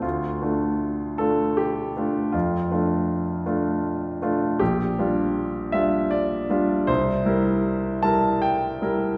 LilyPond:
\new Staff \with { instrumentName = "Grand piano" } { \time 3/4 \key d \minor \tempo 4 = 79 << { f'4. a'8 g'4 | f'2~ f'8 r8 | g'4. e''8 d''4 | c''4. a''8 g''4 | } \\ { d,8 <a d' f'>4 <a d' f'>4 <a d' f'>8 | f,8 <a d' f'>4 <a d' f'>4 <a d' f'>8 | bes,,8 <g d' f'>4 <g d' f'>4 <g d' f'>8 | c,8 <g e' bes'>4 <g e' bes'>4 <g e' bes'>8 | } >> }